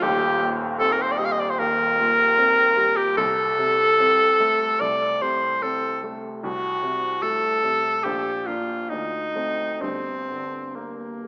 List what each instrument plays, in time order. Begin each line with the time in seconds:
0.02 grand piano D#1 D#2, alto saxophone G4
0.42 grand piano A#2
0.79 grand piano C4, alto saxophone A4
0.92 alto saxophone A#4
1.02 alto saxophone C5
1.12 alto saxophone D5
1.18 grand piano G3, alto saxophone D#5
1.25 alto saxophone F5
1.32 alto saxophone D#5
1.40 alto saxophone D5
1.50 alto saxophone C5
1.59 grand piano D#2, alto saxophone A#4
1.99 grand piano A#2
2.38 grand piano C4
2.77 grand piano G3
2.97 alto saxophone G4
3.17 grand piano C2, alto saxophone A4
3.58 grand piano C3
4.00 grand piano C4
4.40 grand piano A3
4.80 grand piano C2, alto saxophone D5
5.22 grand piano C3, alto saxophone C5
5.62 grand piano C4, alto saxophone A4
6.03 grand piano A3
6.43 grand piano C2, alto saxophone F#4
6.83 grand piano C3
7.22 grand piano A3, alto saxophone A4
7.63 grand piano C3
8.04 grand piano A#1, alto saxophone G4
8.46 grand piano A#3 D4, alto saxophone F4
8.89 grand piano D2, alto saxophone D#4
9.35 grand piano A3 C4
9.81 grand piano G1 G2, alto saxophone C4
10.30 grand piano D3
10.76 alto saxophone A#3, grand piano A#3
11.24 grand piano G3